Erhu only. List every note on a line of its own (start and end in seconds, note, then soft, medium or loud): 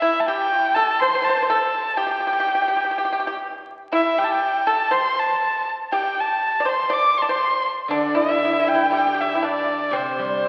0.00 0.22 E5 medium
0.20 0.28 A5 medium
0.26 0.76 G5 medium
0.74 1.01 A5 medium
1.00 1.26 C6 medium
1.24 1.49 A5 medium
1.49 1.98 A5 medium
1.97 3.44 G5 medium
3.93 4.20 E5 medium
4.18 4.25 G5 medium
4.24 4.33 A5 medium
4.32 4.68 G5 medium
4.67 4.94 A5 medium
4.93 5.21 C6 medium
5.19 5.69 A5 medium
5.94 6.22 G5 medium
6.20 6.70 A5 medium
6.69 6.95 C6 medium
6.93 7.19 D6 loud
7.18 7.23 C6 medium
7.22 7.33 A5 medium
7.31 7.66 C6 medium
7.91 8.18 D5 medium
8.17 8.70 E5 medium
8.68 8.93 G5 medium
8.93 9.22 G5 medium
9.21 9.46 E5 medium
9.45 9.97 D5 medium
9.96 10.48 C5 medium